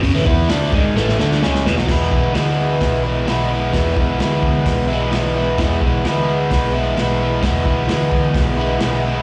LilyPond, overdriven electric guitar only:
\new Staff \with { instrumentName = "Overdriven electric guitar" } { \time 4/4 \key e \mixolydian \tempo 4 = 130 <fis, cis>16 <a, e>16 <e b e'>8 <d a d'>8 <gis, dis gis>8 <a, e a>8 <d a d'>8 <cis gis cis'>8 <e, b,>16 <b, fis>16 | <e gis b e'>8 <gis b e'>8 <e gis b e'>4. <gis b e'>8 <e gis b e'>8 <gis b e'>8 | <e gis b e'>8 <gis b e'>8 <e gis b e'>4. <gis b e'>8 <e gis b e'>8 <gis b e'>8 | <e gis b e'>8 <gis b e'>8 <e gis b e'>4. <gis b e'>8 <e gis b e'>8 <gis b e'>8 |
<e gis b e'>8 <gis b e'>8 <e gis b e'>4. <gis b e'>8 <e gis b e'>8 <gis b e'>8 | }